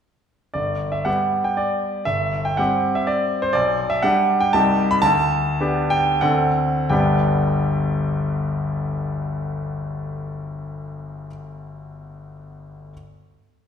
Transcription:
0.54 1.05 G1 soft
0.54 0.92 D5 medium
0.92 1.06 E5 medium
1.05 2.04 G3 soft
1.05 2.04 B3 soft
1.05 2.04 G4 soft
1.05 1.45 F#5 medium
1.44 1.58 G5 medium
1.57 2.07 D5 medium
2.05 2.56 G1 soft
2.05 2.44 E5 medium
2.45 2.59 G5 medium
2.57 3.51 G3 soft
2.57 3.52 C4 soft
2.57 3.52 G4 soft
2.57 2.96 F#5 medium
2.95 3.08 E5 medium
3.07 3.43 D5 medium
3.42 3.55 C5 medium
3.53 4.02 B1 medium
3.53 3.90 D5 medium
3.90 4.03 E5 medium
4.03 4.50 G3 soft
4.03 4.50 D4 soft
4.03 4.50 G4 soft
4.03 4.41 F#5 medium
4.41 4.54 G5 medium
4.53 5.02 C2 medium
4.53 5.00 G3 soft
4.53 5.00 D#4 soft
4.53 5.00 G4 soft
4.53 4.91 A5 medium
4.91 5.04 B5 medium
5.02 5.58 D2 medium
5.02 5.90 A5 loud
5.60 6.19 B3 soft
5.60 6.19 D4 soft
5.60 6.19 G4 medium
5.90 6.22 G5 medium
6.21 6.89 D2 medium
6.21 6.87 C4 soft
6.21 6.87 D4 soft
6.21 6.87 A4 soft
6.21 6.90 F#5 medium
6.89 11.27 G1 medium
6.89 11.27 D2 soft
6.89 11.27 G3 soft
6.89 11.28 B3 soft
6.89 11.27 D4 soft
6.89 11.28 G4 soft
6.89 11.26 G5 medium

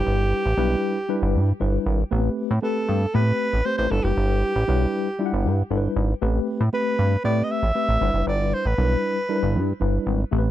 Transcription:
0.00 0.42 G3 medium
0.00 0.42 D4 medium
0.00 0.42 E4 medium
0.00 1.48 G4 loud
0.00 0.43 B4 medium
0.07 0.33 G1 loud
0.45 0.54 A1 medium
0.57 0.76 B1 medium
0.57 0.97 G3 medium
0.57 0.97 D4 medium
0.57 0.97 E4 medium
0.57 0.97 B4 loud
1.09 1.48 G3 loud
1.09 1.48 D4 medium
1.09 1.48 E4 medium
1.09 1.48 B4 loud
1.22 1.36 G1 loud
1.35 1.53 G2 loud
1.60 1.79 G1 medium
1.60 1.99 G3 medium
1.60 1.99 D4 medium
1.60 2.00 E4 medium
1.60 2.00 B4 medium
1.86 2.04 G#1 medium
2.11 2.29 A1 loud
2.11 2.50 A3 medium
2.11 2.18 B3 medium
2.11 2.51 G4 medium
2.11 2.51 B4 loud
2.17 2.53 C4 medium
2.51 2.59 A2 loud
2.62 3.02 A3 medium
2.62 3.02 C4 medium
2.62 3.02 G4 medium
2.62 3.16 A4 loud
2.62 3.02 B4 medium
2.89 3.06 G2 medium
3.14 3.32 A2 medium
3.14 3.53 A3 medium
3.14 3.20 B3 medium
3.14 3.53 G4 medium
3.14 3.67 B4 loud
3.14 3.54 B4 medium
3.20 3.56 C4 medium
3.53 3.62 A1 medium
3.65 3.91 A3 medium
3.65 3.91 C4 medium
3.65 3.91 G4 medium
3.65 3.90 B4 medium
3.65 3.77 C5 loud
3.78 3.88 A1 medium
3.78 3.92 C5 loud
3.90 4.00 G1 medium
3.90 4.52 G3 medium
3.90 4.52 D4 medium
3.90 4.52 E4 medium
3.90 4.05 A4 loud
3.90 4.53 B4 medium
4.04 4.13 F#1 medium
4.04 5.58 G4 loud
4.17 4.44 G1 medium
4.56 4.64 A1 medium
4.67 4.86 B1 loud
4.67 5.07 G3 loud
4.67 5.07 D4 medium
4.67 5.07 E4 medium
4.67 5.07 B4 loud
5.19 5.58 G3 loud
5.19 5.58 D4 medium
5.19 5.58 E4 medium
5.19 5.26 F4 medium
5.26 5.62 F#5 loud
5.33 5.47 G1 loud
5.45 5.63 G2 medium
5.70 5.88 G1 medium
5.70 6.09 G3 medium
5.70 6.10 D4 medium
5.70 6.10 E4 medium
5.70 5.77 A4 medium
5.77 6.13 B4 medium
5.96 6.14 G#1 loud
6.21 6.40 A1 loud
6.21 6.61 A3 medium
6.21 6.61 C4 medium
6.21 6.61 G4 medium
6.21 6.61 B4 loud
6.61 6.69 A2 loud
6.73 7.12 A3 medium
6.73 7.12 C4 medium
6.73 7.12 G4 medium
6.73 7.12 B4 medium
6.73 7.21 B4 medium
6.99 7.17 G2 medium
7.24 7.42 A2 loud
7.24 7.63 A3 medium
7.24 7.63 C4 medium
7.24 7.63 G4 medium
7.24 7.64 B4 medium
7.24 7.45 D5 loud
7.44 7.53 D#5 medium
7.51 8.28 E5 loud
7.63 7.72 A1 medium
7.75 8.01 A3 medium
7.75 8.01 C4 medium
7.75 8.01 G4 medium
7.75 8.00 B4 medium
7.89 7.98 A1 medium
8.01 8.10 G1 loud
8.01 8.63 G3 medium
8.01 8.63 D4 medium
8.01 8.63 E4 medium
8.01 8.63 B4 medium
8.14 8.23 F#1 medium
8.27 8.54 G1 medium
8.27 8.55 D5 medium
8.54 8.68 C5 medium
8.65 8.74 A1 medium
8.65 9.69 B4 medium
8.78 8.96 B1 medium
8.78 9.17 G3 medium
8.78 9.17 D4 medium
8.78 9.17 E4 medium
8.78 8.85 A#4 medium
8.85 9.21 B4 medium
9.29 9.68 G3 loud
9.29 9.68 D4 medium
9.29 9.69 E4 medium
9.29 9.36 A#4 medium
9.36 9.72 B4 loud
9.43 9.57 G1 loud
9.55 9.73 G2 medium
9.80 9.99 G1 medium
9.80 10.20 G3 medium
9.80 10.20 D4 medium
9.80 10.20 E4 medium
9.80 10.20 B4 loud
10.07 10.24 G#1 medium
10.31 10.50 A1 loud
10.31 10.51 A3 medium
10.31 10.51 C4 medium
10.31 10.51 G4 medium
10.31 10.38 A4 medium
10.38 10.51 B4 loud

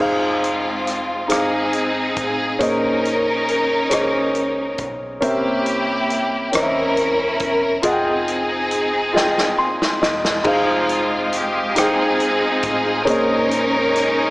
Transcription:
0.00 1.26 F1 medium
0.00 1.26 G#3 soft
0.00 1.27 C4 soft
0.00 1.11 D#4 medium
0.00 1.27 F4 medium
0.00 1.11 G#4 medium
0.00 1.12 C5 medium
0.00 1.12 F5 medium
0.44 closed hi-hat soft
0.87 cross-stick soft
0.87 closed hi-hat soft
1.28 2.13 G#1 medium
1.28 2.57 C4 medium
1.28 2.41 D#4 soft
1.28 2.56 D#4 medium
1.28 2.42 G#4 soft
1.28 2.42 C5 soft
1.28 2.43 F5 medium
1.28 closed hi-hat medium
1.32 2.18 G#4 medium
1.32 cross-stick medium
1.73 closed hi-hat soft
2.16 2.57 A1 medium
2.16 kick medium
2.16 closed hi-hat soft
2.20 2.59 G#4 medium
2.59 3.88 A#1 medium
2.59 3.87 A#2 soft
2.59 3.72 C#4 medium
2.59 4.76 C#4 medium
2.59 4.75 D#4 medium
2.59 3.73 G#4 medium
2.59 3.73 C5 medium
2.59 3.74 D#5 medium
2.59 kick medium
2.59 closed hi-hat medium
2.65 4.81 A#4 medium
3.05 closed hi-hat soft
3.48 closed hi-hat soft
3.90 4.75 C#2 medium
3.90 5.03 C#4 medium
3.90 5.04 G#4 medium
3.90 5.04 C5 soft
3.90 5.05 D#5 medium
3.90 cross-stick medium
3.90 closed hi-hat medium
4.35 closed hi-hat soft
4.78 5.19 B1 medium
4.78 kick medium
4.78 closed hi-hat soft
5.21 6.49 C2 medium
5.21 6.49 C3 medium
5.21 6.34 C#4 medium
5.21 6.50 G4 medium
5.21 6.34 A#4 medium
5.21 6.35 C5 medium
5.21 6.36 E5 medium
5.21 kick medium
5.21 closed hi-hat medium
5.25 6.50 A#3 medium
5.25 6.50 E4 medium
5.66 closed hi-hat soft
6.10 closed hi-hat soft
6.52 7.37 E2 medium
6.52 7.65 C#4 medium
6.52 7.82 C#4 medium
6.52 7.82 E4 medium
6.52 7.66 A#4 soft
6.52 7.66 C5 soft
6.52 6.61 D#5 soft
6.52 cross-stick medium
6.52 closed hi-hat medium
6.57 7.38 A#4 medium
6.62 7.70 E5 medium
6.97 closed hi-hat soft
7.40 7.81 E1 medium
7.40 kick medium
7.40 closed hi-hat soft
7.44 7.83 A#4 medium
7.82 9.15 F1 medium
7.82 9.99 C4 medium
7.82 9.99 D#4 medium
7.82 8.96 F4 medium
7.82 8.96 G#4 medium
7.82 8.97 D#5 medium
7.82 7.91 F#5 medium
7.82 kick medium
7.82 closed hi-hat medium
7.87 10.04 G#4 medium
7.93 9.01 G5 medium
8.28 closed hi-hat soft
8.71 closed hi-hat soft
9.13 9.98 G#1 medium
9.13 10.26 F4 medium
9.13 10.27 G#4 medium
9.13 10.00 D#5 medium
9.13 snare soft
9.17 10.28 G5 medium
9.38 snare soft
9.58 9.99 C6 soft
9.82 snare soft
10.01 10.42 E1 medium
10.01 10.43 D#5 medium
10.01 snare medium
10.25 snare medium
10.44 11.75 F1 medium
10.44 13.03 G#3 medium
10.44 11.57 D#4 medium
10.44 13.03 D#4 soft
10.44 13.03 F4 soft
10.44 11.30 F4 medium
10.44 11.58 G#4 medium
10.44 13.03 C5 medium
10.44 11.58 C5 medium
10.44 11.59 F5 medium
10.44 kick medium
10.44 crash medium
10.48 11.74 G#3 soft
10.48 11.74 C4 soft
10.89 closed hi-hat soft
11.32 11.77 G4 medium
11.32 closed hi-hat soft
11.75 12.59 G#1 medium
11.75 13.05 C4 medium
11.75 12.88 D#4 soft
11.75 13.04 D#4 medium
11.75 12.61 G#4 medium
11.75 12.89 G#4 soft
11.75 12.90 C5 soft
11.75 cross-stick medium
11.75 closed hi-hat medium
11.79 12.90 G5 medium
12.20 closed hi-hat soft
12.62 13.04 A1 medium
12.62 13.04 G#4 medium
12.62 kick medium
12.62 closed hi-hat soft
13.05 14.30 A#1 medium
13.05 14.30 A#2 medium
13.05 14.30 G#3 medium
13.05 13.14 C4 soft
13.05 14.19 C#4 medium
13.05 14.30 D#4 soft
13.05 14.19 G#4 medium
13.05 14.30 A#4 medium
13.05 14.30 C5 medium
13.05 14.20 C5 medium
13.05 kick medium
13.05 closed hi-hat medium
13.09 14.30 C#4 medium
13.09 14.30 C#4 soft
13.09 14.30 D#4 medium
13.09 14.21 D#5 medium
13.51 closed hi-hat soft
13.96 cross-stick soft
13.96 closed hi-hat soft

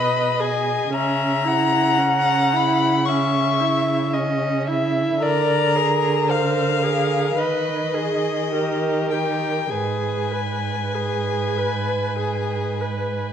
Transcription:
0.00 0.90 B2 soft
0.00 0.42 B4 soft
0.00 0.94 D#5 medium
0.00 0.42 B5 medium
0.40 0.93 G#4 soft
0.40 0.94 G#5 medium
0.93 5.19 C#3 soft
0.93 1.47 C#4 soft
0.93 1.49 E5 medium
0.93 2.57 A#5 medium
1.45 2.00 E4 soft
1.45 3.10 F#5 medium
1.98 2.55 C#4 soft
2.53 3.07 E4 medium
2.53 3.07 B5 medium
3.06 3.62 C#4 soft
3.06 4.15 E5 medium
3.06 4.12 C#6 medium
3.60 4.15 E4 soft
4.14 4.69 C#4 soft
4.14 4.67 D#5 medium
4.67 5.22 E4 soft
4.67 5.24 E5 medium
5.22 7.34 D3 soft
5.22 5.78 A#4 soft
5.22 5.77 D5 medium
5.22 6.32 A#5 medium
5.76 6.30 G#4 soft
5.76 6.30 A#4 soft
6.29 6.84 A#4 soft
6.29 6.84 C5 soft
6.29 7.40 F5 medium
6.82 7.38 G#4 soft
6.82 7.37 A#4 soft
7.35 9.73 D#3 soft
7.35 7.95 B4 soft
7.35 7.96 B4 soft
7.35 9.10 D#5 medium
7.94 8.52 G#4 soft
8.53 9.12 G4 soft
8.53 9.13 A#4 soft
9.11 9.70 G4 soft
9.11 9.72 A#4 soft
9.11 9.71 G5 soft
9.70 13.33 G#2 soft
9.70 10.34 G#4 soft
9.70 13.33 B4 soft
9.70 13.33 G#5 medium
10.32 10.97 B4 soft
10.95 11.59 G#4 soft
11.58 12.19 B4 soft
12.20 12.82 G#4 soft
12.81 13.33 B4 soft

